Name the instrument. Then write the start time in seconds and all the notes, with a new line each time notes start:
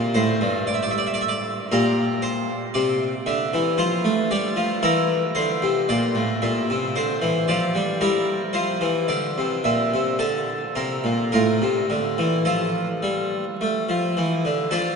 harpsichord
Already playing: A#2 A4 D5
0.15 A2 C5
0.41 G2
0.67 D5
0.74 E5
0.83 D5
0.91 E5
0.98 D5
1.07 E5
1.14 D5
1.21 E5
1.28 D5
1.72 A#2 G4 A#4
2.22 C5
2.74 C3 D5
3.26 D3 E5
3.54 E3
3.78 F3 C5
4.04 A3
4.31 G3 D5
4.56 F3
4.83 E3 E4 A#4
5.35 D3 C5
5.62 C3
5.89 A#2 D5
6.15 A2
6.42 A#2 E5
6.70 C3
6.96 D3 C5
7.22 E3
7.48 F3 D5
7.75 G3
8.01 G3 E4 A#4
8.53 F3 C5
8.81 E3
9.08 D3 D5
9.38 C3
9.64 A#2 E5
9.94 C3
10.19 D3 A4
10.75 C3 A#4
11.04 A#2
11.32 A2 F4 A#4
11.62 C3
11.90 D3
12.18 E3
12.45 F3 A4
13.03 G3
13.61 A3
13.89 F3
14.17 E3
14.45 D3
14.71 F3 D4 A4